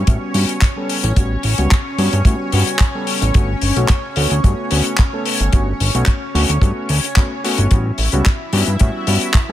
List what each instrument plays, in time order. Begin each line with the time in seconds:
Already playing: analog synth pad C#4 C#5
0.07 analog synth bass A2, electric grand piano G3 B3 C#4 F#4, kick, closed hi-hat
0.34 analog synth bass G2, electric grand piano G3 B3 C#4 F#4, open hi-hat
0.49 closed hi-hat
0.61 kick, clap, closed hi-hat
0.76 electric grand piano G3 B3 C#4 A4
0.89 open hi-hat
1.04 analog synth bass A1, closed hi-hat
1.16 analog synth bass A1, electric grand piano G3 B3 C#4 F#4, kick, closed hi-hat
1.43 analog synth bass A1, open hi-hat
1.58 analog synth bass C#2, electric grand piano G3 B3 C#4 F#4, closed hi-hat
1.71 kick, clap, closed hi-hat
1.98 analog synth bass G2, electric grand piano G3 B3 C#4 F#4, open hi-hat
2.13 analog synth bass G2, closed hi-hat
2.25 analog synth bass A2, electric grand piano G3 B3 C#4 F#4, kick, closed hi-hat
2.52 analog synth bass G2, electric grand piano G3 B3 C#4 F#4, open hi-hat
2.67 closed hi-hat
2.79 kick, clap, closed hi-hat
2.95 electric grand piano G3 B3 C#4 A4
3.07 open hi-hat
3.22 analog synth bass A1, closed hi-hat
3.34 analog synth bass G1, electric grand piano A3 B3 C#4 F#4, kick, closed hi-hat
3.62 analog synth bass G1, open hi-hat
3.76 analog synth bass B1, electric grand piano A3 B3 C#4 F#4, closed hi-hat
3.88 kick, clap, closed hi-hat
4.16 analog synth bass D2, electric grand piano A3 B3 C#4 F#4, open hi-hat
4.31 analog synth bass D2, closed hi-hat
4.43 analog synth bass G2, electric grand piano A3 B3 C#4 F#4, kick, closed hi-hat
4.71 analog synth bass D2, electric grand piano A3 B3 C#4 F#4, open hi-hat
4.85 closed hi-hat
4.98 kick, clap, closed hi-hat
5.13 electric grand piano A3 B3 C#4 A4
5.25 open hi-hat
5.40 analog synth bass G1, closed hi-hat
5.53 analog synth bass G1, electric grand piano A3 B3 C#4 F#4, kick, closed hi-hat
5.80 analog synth bass G1, open hi-hat
5.94 analog synth bass B1, electric grand piano A3 B3 C#4 F#4, closed hi-hat
6.06 kick, clap, closed hi-hat
6.34 analog synth bass D2, electric grand piano A3 B3 C#4 F#4, open hi-hat
6.49 analog synth bass D2, closed hi-hat
6.62 analog synth bass G2, electric grand piano A3 B3 C#4 F#4, kick, closed hi-hat
6.89 analog synth bass D2, open hi-hat
7.04 closed hi-hat
7.16 electric grand piano A3 B3 C#4 F#4, kick, clap, closed hi-hat
7.44 electric grand piano A3 B3 C#4 F#4, open hi-hat
7.58 analog synth bass G1, closed hi-hat
7.71 analog synth bass A1, electric grand piano G3 B3 C#4 F#4, analog synth pad E4 E5, kick, closed hi-hat
7.98 analog synth bass A1, open hi-hat
8.12 analog synth bass C#2, electric grand piano G3 B3 C#4 F#4, closed hi-hat
8.26 kick, clap, closed hi-hat
8.53 analog synth bass G2, electric grand piano G3 B3 C#4 F#4, open hi-hat
8.66 analog synth bass G2, closed hi-hat
8.79 analog synth bass A2, electric grand piano G3 B3 C#4 F#4, kick, closed hi-hat
9.07 analog synth bass G2, electric grand piano G3 B3 C#4 F#4, open hi-hat
9.21 closed hi-hat
9.34 kick, clap, closed hi-hat
9.49 electric grand piano G3 B3